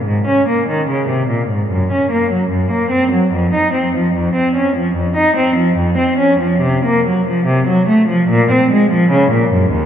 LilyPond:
\new Staff \with { instrumentName = "Cello" } { \clef bass \time 4/4 \key des \major \tempo 4 = 73 aes,16 des'16 bes16 ees16 des16 c16 bes,16 aes,16 ges,16 des'16 bes16 ges16 ges,16 bes16 c'16 ges16 | f,16 ees'16 c'16 f16 f,16 c'16 des'16 f16 f,16 ees'16 c'16 f16 f,16 c'16 des'16 f16 | \key bes \minor c16 bes16 ges16 f16 c16 ges16 a16 f16 bes,16 c'16 aes16 f16 des16 bes,16 ges,16 ees,16 | }